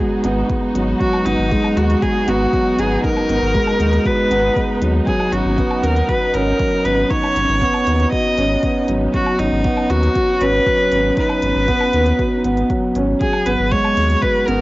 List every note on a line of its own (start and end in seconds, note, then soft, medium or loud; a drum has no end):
0.00 0.75 F#3 medium
0.00 0.50 G#3 loud
0.00 5.07 G#3 medium
0.00 0.25 B3 medium
0.00 13.20 B3 medium
0.00 3.04 D#4 medium
0.00 13.21 D#4 medium
0.00 0.13 F#4 medium
0.00 6.70 F#4 medium
0.00 0.24 G#4 loud
0.24 0.43 G#1 loud
0.24 0.49 B3 loud
0.24 closed hi-hat medium
0.49 0.74 G#3 medium
0.49 kick loud
0.49 closed hi-hat soft
0.75 0.94 G#1 medium
0.75 0.99 F#3 medium
0.75 closed hi-hat medium
1.00 1.25 F#3 medium
1.00 1.27 F#4 medium
1.00 kick loud
1.00 closed hi-hat soft
1.13 low woodblock medium
1.26 1.35 G#1 loud
1.26 1.40 B3 medium
1.26 1.79 D#4 loud
1.26 closed hi-hat medium
1.38 1.57 G#1 medium
1.51 1.75 G#3 loud
1.51 kick loud
1.51 closed hi-hat soft
1.64 low woodblock medium
1.76 1.95 D#2 medium
1.76 2.01 G#3 medium
1.76 2.04 F#4 medium
1.76 closed hi-hat medium
1.90 closed hi-hat soft
2.02 2.17 F#4 medium
2.02 2.30 G#4 loud
2.02 kick loud
2.02 closed hi-hat soft
2.27 2.46 G#1 loud
2.27 2.52 B3 loud
2.27 2.81 F#4 loud
2.27 closed hi-hat medium
2.53 2.77 F#3 medium
2.53 kick loud
2.53 closed hi-hat soft
2.78 2.97 G#1 medium
2.78 3.03 B3 medium
2.78 3.04 G#4 loud
2.78 closed hi-hat medium
3.04 3.28 D#4 medium
3.04 4.08 A#4 loud
3.04 kick loud
3.04 closed hi-hat soft
3.17 low woodblock medium
3.29 3.38 G#1 loud
3.29 3.44 B3 medium
3.29 closed hi-hat medium
3.42 3.61 G#1 medium
3.55 3.79 G#3 medium
3.55 kick loud
3.55 closed hi-hat soft
3.67 low woodblock medium
3.80 3.99 D#2 medium
3.80 4.04 G#3 medium
3.80 closed hi-hat medium
3.93 closed hi-hat soft
4.06 4.20 F#4 medium
4.06 4.82 B4 loud
4.06 kick loud
4.06 closed hi-hat soft
4.31 4.50 G#1 loud
4.31 4.55 B3 medium
4.31 closed hi-hat medium
4.56 4.81 G#3 medium
4.56 kick loud
4.56 closed hi-hat soft
4.82 5.01 D#2 medium
4.82 5.06 F#3 medium
4.82 closed hi-hat medium
5.07 5.31 F#3 medium
5.07 14.61 C#4 medium
5.07 5.34 G#4 medium
5.07 kick loud
5.07 closed hi-hat soft
5.20 low woodblock medium
5.32 5.42 G#1 loud
5.32 5.47 C#4 medium
5.32 5.85 F#4 medium
5.32 closed hi-hat medium
5.45 5.64 G#1 medium
5.58 5.82 B3 loud
5.58 kick loud
5.58 closed hi-hat soft
5.71 low woodblock medium
5.83 6.02 D#2 medium
5.83 6.08 B3 medium
5.83 6.11 A#4 medium
5.83 closed hi-hat medium
5.96 closed hi-hat soft
6.09 6.23 F#4 medium
6.09 6.36 B4 loud
6.09 kick loud
6.09 closed hi-hat soft
6.34 6.53 G#1 loud
6.34 6.58 C#4 medium
6.34 6.87 A#4 loud
6.34 closed hi-hat medium
6.59 6.84 F#3 medium
6.59 kick loud
6.59 closed hi-hat soft
6.85 7.04 G#1 medium
6.85 7.09 C#4 medium
6.85 7.12 B4 loud
6.85 closed hi-hat medium
7.11 7.35 D#4 medium
7.11 8.12 C#5 loud
7.11 kick loud
7.11 closed hi-hat soft
7.24 low woodblock medium
7.36 7.45 G#1 loud
7.36 7.51 C#4 medium
7.36 closed hi-hat medium
7.49 7.67 G#1 medium
7.61 7.86 B3 loud
7.61 kick loud
7.61 closed hi-hat soft
7.74 low woodblock medium
7.87 8.06 D#2 medium
7.87 8.11 B3 medium
7.87 closed hi-hat medium
8.00 closed hi-hat soft
8.12 8.27 F#4 medium
8.12 8.85 D#5 loud
8.12 kick loud
8.12 closed hi-hat soft
8.38 8.56 G#1 loud
8.38 8.62 C#4 loud
8.38 closed hi-hat medium
8.63 8.88 B3 medium
8.63 kick loud
8.63 closed hi-hat soft
8.88 9.07 G#1 medium
8.88 9.13 F#3 medium
8.88 closed hi-hat medium
9.14 9.38 F#3 medium
9.14 9.41 F#4 loud
9.14 kick medium
9.14 closed hi-hat soft
9.26 low woodblock medium
9.39 9.49 G#1 loud
9.39 9.54 C#4 medium
9.39 9.92 D#4 loud
9.39 closed hi-hat medium
9.52 9.71 G#1 medium
9.64 9.89 B3 loud
9.64 kick loud
9.64 closed hi-hat soft
9.77 low woodblock medium
9.90 10.09 D#2 medium
9.90 10.14 B3 medium
9.90 10.43 F#4 loud
9.90 closed hi-hat medium
10.03 closed hi-hat soft
10.15 10.30 F#4 medium
10.15 kick medium
10.15 closed hi-hat soft
10.41 10.60 G#1 loud
10.41 10.65 C#4 loud
10.41 11.18 B4 loud
10.41 closed hi-hat medium
10.66 10.91 F#3 medium
10.66 kick loud
10.66 closed hi-hat soft
10.92 11.11 G#1 medium
10.92 11.16 C#4 medium
10.92 closed hi-hat medium
11.17 11.41 D#4 medium
11.17 12.66 B4 loud
11.17 kick loud
11.17 closed hi-hat soft
11.29 low woodblock medium
11.42 11.52 G#1 loud
11.42 11.57 C#4 medium
11.42 closed hi-hat medium
11.55 11.74 G#1 medium
11.68 11.92 B3 loud
11.68 kick loud
11.68 closed hi-hat soft
11.81 low woodblock medium
11.93 12.12 D#2 loud
11.93 12.18 B3 medium
11.93 closed hi-hat medium
12.06 closed hi-hat soft
12.19 12.34 F#4 medium
12.19 kick loud
12.19 closed hi-hat soft
12.44 12.63 G#1 medium
12.44 12.59 B3 medium
12.44 closed hi-hat medium
12.57 closed hi-hat soft
12.70 12.94 F#3 medium
12.70 kick loud
12.70 closed hi-hat soft
12.95 13.14 G#1 medium
12.95 13.10 C#4 loud
12.95 closed hi-hat medium
13.20 13.45 F#3 medium
13.20 14.61 G#3 medium
13.20 13.48 G#4 loud
13.20 kick loud
13.20 closed hi-hat soft
13.33 low woodblock medium
13.46 13.56 G#1 loud
13.46 13.61 B3 medium
13.46 13.73 B4 loud
13.46 closed hi-hat medium
13.59 13.78 G#1 medium
13.67 14.61 D#4 medium
13.72 13.96 G#3 loud
13.72 14.23 C#5 loud
13.72 kick loud
13.72 closed hi-hat soft
13.84 low woodblock medium
13.97 14.16 D#2 medium
13.97 14.22 G#3 medium
13.97 closed hi-hat medium
14.10 closed hi-hat soft
14.22 14.37 F#4 medium
14.22 14.49 B4 loud
14.22 kick loud
14.22 closed hi-hat soft
14.33 14.61 F#4 medium
14.47 14.61 G#1 medium
14.47 14.61 B3 medium
14.47 14.61 A#4 loud
14.47 closed hi-hat medium